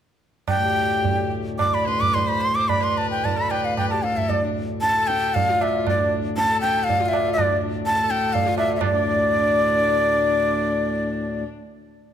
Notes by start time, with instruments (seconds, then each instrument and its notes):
0.48 harmonium D2 A2, bansuri G5, tabla na, tabla ge
0.61 sarangi G4
1.04 tabla tin, tabla ge
1.59 bansuri D6, tabla na, tabla ge
1.72 sarangi D5, bansuri B5
1.86 sarangi B4, bansuri C6, tabla te
2.01 bansuri D6, tabla ge
2.14 bansuri C6, tabla tin, tabla ge
2.26 sarangi C5, bansuri B5
2.41 bansuri C6
2.55 sarangi C5, bansuri D6
2.68 sarangi D5, bansuri B5, tabla na, tabla ge
2.81 sarangi B4, bansuri C6
2.98 bansuri A5
3.11 bansuri G5
3.25 bansuri A5, tabla tin, tabla ge
3.37 sarangi A4, bansuri B5
3.50 sarangi B4, bansuri G5, tabla na
3.65 bansuri F5
3.77 bansuri G5, tabla na, tabla ge
3.90 sarangi G4, bansuri A5
4.03 sarangi A4, bansuri F5, tabla te
4.17 bansuri E5, tabla ge
4.30 bansuri D5, tabla tin, tabla ge
4.44 sarangi D4
4.81 bansuri A5, tabla te
4.97 sarangi A4
5.07 bansuri G5, tabla te
5.34 bansuri F5, tabla tin, tabla ge
5.49 sarangi F4
5.61 bansuri E5, tabla na
5.87 bansuri D5, tabla na, tabla ge
6.00 sarangi D4
6.37 bansuri A5, tabla te
6.51 sarangi A4
6.61 bansuri G5, tabla te
6.84 bansuri F5
6.89 tabla tin, tabla ge
7.00 sarangi F4
7.06 bansuri E5 F5
7.13 tabla na
7.33 bansuri D5
7.38 tabla na, tabla ge
7.51 sarangi D4
7.86 bansuri A5, tabla te
8.00 sarangi A4
8.10 bansuri G5, tabla te
8.33 bansuri F5, tabla tin, tabla ge
8.47 sarangi F4
8.58 bansuri E5, tabla na
8.76 bansuri E5
8.81 harmonium D2 A2, bansuri D5, tabla na, tabla ge
8.94 sarangi D4